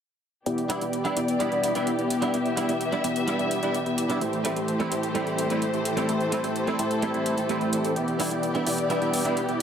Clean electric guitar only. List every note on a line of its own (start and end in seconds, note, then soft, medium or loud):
0.69 0.83 G3 medium
0.69 0.83 B3 medium
0.69 0.83 D4 medium
0.69 0.84 E4 medium
1.04 1.18 G3 medium
1.04 1.18 B3 medium
1.04 1.19 D4 medium
1.04 1.19 E4 medium
1.39 1.72 G3 medium
1.39 1.72 B3 medium
1.39 1.73 D4 medium
1.39 1.73 E4 medium
1.75 1.89 G3 medium
1.75 1.89 B3 medium
1.75 1.89 D4 medium
1.75 1.89 E4 medium
2.22 2.35 G3 medium
2.22 2.36 B3 medium
2.22 2.36 D4 medium
2.22 2.36 E4 medium
2.57 2.71 G3 medium
2.57 2.71 B3 medium
2.57 2.71 D4 medium
2.57 2.71 E4 medium
2.92 3.06 G3 medium
2.92 3.06 B3 medium
2.92 3.06 D4 medium
2.92 3.06 E4 loud
3.27 3.60 G3 medium
3.27 3.60 B3 medium
3.27 3.60 D4 medium
3.27 3.60 E4 medium
3.62 3.76 G3 medium
3.62 3.76 B3 medium
3.62 3.77 D4 medium
3.62 3.77 E4 loud
4.09 4.20 G3 medium
4.09 4.20 B3 medium
4.09 4.20 D4 medium
4.09 4.20 E4 medium
4.44 4.58 G3 medium
4.44 4.58 A3 medium
4.44 4.58 C4 medium
4.44 4.59 E4 medium
4.79 4.93 G3 medium
4.79 4.93 A3 medium
4.79 4.94 C4 medium
4.79 4.94 E4 loud
5.14 5.47 G3 medium
5.14 5.47 A3 medium
5.14 5.48 C4 medium
5.14 5.48 E4 medium
5.50 5.64 G3 medium
5.50 5.64 A3 medium
5.50 5.64 C4 medium
5.50 5.64 E4 medium
5.97 6.10 G3 medium
5.97 6.11 A3 medium
5.97 6.11 C4 medium
5.97 6.11 E4 medium
6.32 6.46 G3 medium
6.32 6.46 A3 medium
6.32 6.46 C4 medium
6.32 6.46 E4 medium
6.67 6.81 G3 medium
6.67 6.81 A3 medium
6.67 6.81 C4 medium
6.67 6.81 E4 medium
7.02 7.35 G3 medium
7.02 7.35 A3 medium
7.02 7.35 C4 medium
7.02 7.35 E4 medium
7.49 7.95 G3 medium
7.49 7.95 A3 medium
7.49 7.95 C4 medium
7.49 7.95 E4 medium
8.19 8.33 G3 medium
8.19 8.33 B3 medium
8.19 8.33 D4 medium
8.19 8.34 E4 medium
8.54 8.68 G3 medium
8.54 8.68 B3 medium
8.54 8.69 D4 medium
8.54 8.69 E4 medium
8.89 9.22 G3 medium
8.89 9.22 B3 medium
8.89 9.23 D4 medium
8.89 9.23 E4 medium
9.25 9.39 G3 medium
9.25 9.39 B3 medium
9.25 9.39 D4 medium
9.25 9.39 E4 loud